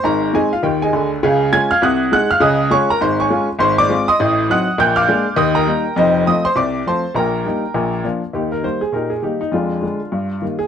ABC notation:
X:1
M:4/4
L:1/8
Q:"Swing" 1/4=203
K:Dblyd
V:1 name="Upright piano"
[Bb]2 [Aa] [Ff] [Gg] [Aea]2 z | [Afa]2 [aa'] [ff'] [_ge'_g']2 [gg'] [ff'] | [ee']2 [dd'] [Bb] [cc'] [dad']2 z | [K:Eb] [cc'] [dd']2 [ec'e']3 [^fe'^f']2 |
[gg'] [fd'f']3 [ee'] [Bgb]3 | [Ece]2 [ee'] [cc'] [dd']2 [c=ac']2 | [Bgb]6 z2 | [B,EG] B c A [EGB] A [B,EG] E |
[A,DF]6- [A,DF] A |]
V:2 name="Upright piano" clef=bass
[A,,,A,,]2 [A,CE]2 [E,,E,]2 [=D,,=D,]2 | [D,,D,]2 [A,DF]2 [C,,C,]2 [A,EA]2 | [D,,D,]2 [A,DF]2 [A,,,A,,]2 [A,DF]2 | [K:Eb] [A,,,A,,]2 [A,CF]2 [=A,,,=A,,]2 [^F,CE]2 |
[B,,,B,,]2 [A,B,D]2 [E,,E,]2 [G,B,E]2 | [F,,,F,,]2 [F,=A,C]2 [C,,C,]2 [F,A,C]2 | [B,,,B,,]2 [G,B,E]2 [B,,,B,,]2 [F,B,D]2 | E,,2 [E,G,B,]2 B,,2 [E,G,]2 |
F,,2 [D,A,]2 G,,2 [E,G,B,]2 |]